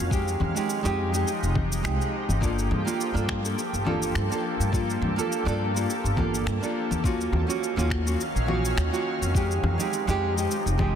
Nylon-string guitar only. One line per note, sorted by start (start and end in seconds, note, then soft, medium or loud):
0.10 0.52 G#3 medium
0.10 0.52 C4 medium
0.10 0.53 D#4 medium
0.10 0.53 G4 medium
0.55 0.80 G#3 medium
0.55 0.81 C4 medium
0.55 0.81 D#4 medium
0.55 0.82 G4 medium
0.83 1.09 G#3 loud
0.83 1.10 C4 medium
0.83 1.10 D#4 medium
0.83 1.10 G4 loud
1.12 1.28 G#3 medium
1.12 1.29 C4 medium
1.12 1.29 D#4 medium
1.12 1.30 G4 medium
1.83 2.38 G#3 medium
1.83 2.39 C4 medium
1.83 2.39 D#4 medium
1.83 2.39 G4 medium
2.41 2.82 A#3 medium
2.41 2.83 D4 medium
2.41 2.83 F4 medium
2.41 2.84 A4 medium
2.85 3.11 A#3 medium
2.85 3.11 D4 medium
2.85 3.12 F4 medium
2.85 3.12 A4 medium
3.14 3.40 A#3 medium
3.14 3.40 D4 medium
3.14 3.41 F4 medium
3.14 3.41 A4 loud
3.43 3.59 A#3 medium
3.43 3.59 D4 medium
3.43 3.60 F4 medium
3.43 3.60 A4 medium
3.85 4.26 A#3 medium
3.85 4.27 D4 medium
3.85 4.27 F4 medium
3.85 4.28 A4 medium
4.29 4.69 A#3 medium
4.29 4.70 D4 medium
4.29 4.70 F4 medium
4.29 4.71 A4 medium
4.72 5.13 A#3 medium
4.72 5.14 D4 medium
4.72 5.14 F4 medium
4.72 5.15 A4 medium
5.16 5.42 A#3 medium
5.16 5.42 D4 medium
5.16 5.43 F4 medium
5.16 5.43 A4 medium
5.45 5.71 A#3 medium
5.45 5.71 D4 medium
5.45 5.72 F4 medium
5.45 5.72 A4 loud
5.74 5.90 A#3 medium
5.74 5.91 D4 medium
5.74 5.91 F4 medium
5.74 5.91 A4 medium
6.16 6.58 A#3 medium
6.16 6.58 D4 medium
6.16 6.59 F4 medium
6.16 6.59 A4 medium
6.61 7.00 A#3 medium
6.61 7.01 D4 medium
6.61 7.01 F4 medium
6.61 7.02 A4 medium
7.04 7.45 A#3 medium
7.04 7.45 C#4 medium
7.04 7.45 F4 medium
7.04 7.46 F#4 medium
7.47 7.73 A#3 medium
7.47 7.73 C#4 medium
7.47 7.74 F4 medium
7.47 7.74 F#4 medium
7.76 8.02 A#3 loud
7.76 8.02 C#4 medium
7.76 8.03 F4 medium
7.76 8.03 F#4 loud
8.04 8.21 A#3 medium
8.04 8.21 C#4 medium
8.04 8.21 F4 medium
8.04 8.22 F#4 medium
8.46 8.88 A#3 medium
8.46 8.88 C#4 medium
8.46 8.89 F4 medium
8.46 8.89 F#4 medium
8.91 9.31 A#3 medium
8.91 9.31 C#4 medium
8.91 9.32 F4 medium
8.91 9.32 F#4 medium
9.34 9.75 G#3 medium
9.34 9.75 C4 medium
9.34 9.76 D#4 medium
9.34 9.76 G4 medium
9.78 10.04 G#3 medium
9.78 10.04 C4 medium
9.78 10.04 D#4 medium
9.78 10.05 G4 medium
10.07 10.33 G#3 loud
10.07 10.33 C4 medium
10.07 10.34 D#4 medium
10.07 10.34 G4 loud
10.36 10.52 G#3 medium
10.36 10.52 C4 medium
10.36 10.53 D#4 medium
10.36 10.53 G4 medium
10.78 10.95 G#3 medium
10.78 10.95 C4 medium
10.78 10.95 D#4 medium
10.78 10.95 G4 medium